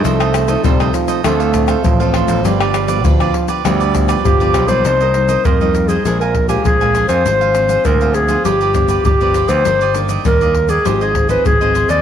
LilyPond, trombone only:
\new Staff \with { instrumentName = "Trombone" } { \clef bass \time 4/4 \key c \minor \tempo 4 = 100 a4 g8 f8 a4 f4 | g4 f4 g4 f4 | r1 | r1 |
r1 | }